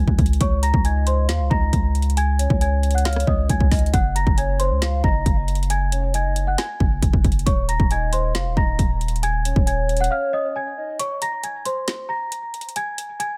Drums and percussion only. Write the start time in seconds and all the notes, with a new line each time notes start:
0.08 kick
0.19 kick, closed hi-hat
0.26 closed hi-hat
0.33 closed hi-hat
0.41 kick, closed hi-hat
0.63 closed hi-hat
0.74 kick
0.85 closed hi-hat
1.07 closed hi-hat
1.29 snare, closed hi-hat
1.51 kick
1.73 kick, closed hi-hat
1.95 closed hi-hat
2.02 closed hi-hat
2.10 closed hi-hat
2.17 closed hi-hat
2.39 closed hi-hat
2.50 kick
2.61 closed hi-hat
2.83 closed hi-hat
2.91 closed hi-hat
2.98 closed hi-hat
3.05 snare, closed hi-hat
3.13 cross-stick, closed hi-hat
3.20 closed hi-hat
3.27 kick
3.49 kick, closed hi-hat
3.60 kick
3.71 kick, snare, closed hi-hat, open hi-hat
3.79 closed hi-hat
3.86 closed hi-hat
3.94 kick, closed hi-hat
4.16 closed hi-hat
4.27 kick
4.38 closed hi-hat
4.60 closed hi-hat
4.82 snare, closed hi-hat
5.04 kick
5.26 kick, closed hi-hat
5.48 closed hi-hat
5.55 closed hi-hat
5.63 closed hi-hat
5.70 closed hi-hat
5.92 closed hi-hat
6.14 closed hi-hat
6.36 closed hi-hat
6.58 snare, closed hi-hat
6.80 kick
7.02 kick, closed hi-hat
7.13 kick
7.24 kick, closed hi-hat
7.32 closed hi-hat
7.39 closed hi-hat
7.47 kick, closed hi-hat
7.69 closed hi-hat
7.80 kick
7.91 closed hi-hat
8.13 closed hi-hat
8.35 snare, closed hi-hat
8.57 kick
8.79 kick, closed hi-hat
9.01 closed hi-hat
9.08 closed hi-hat
9.16 closed hi-hat
9.23 closed hi-hat
9.45 closed hi-hat
9.56 kick
9.67 closed hi-hat
9.89 closed hi-hat
9.97 closed hi-hat
10.04 closed hi-hat
10.99 closed hi-hat
11.22 closed hi-hat
11.44 closed hi-hat
11.65 closed hi-hat
11.88 snare, closed hi-hat
12.32 closed hi-hat
12.54 closed hi-hat
12.61 closed hi-hat
12.69 closed hi-hat
12.76 closed hi-hat
12.98 closed hi-hat
13.20 closed hi-hat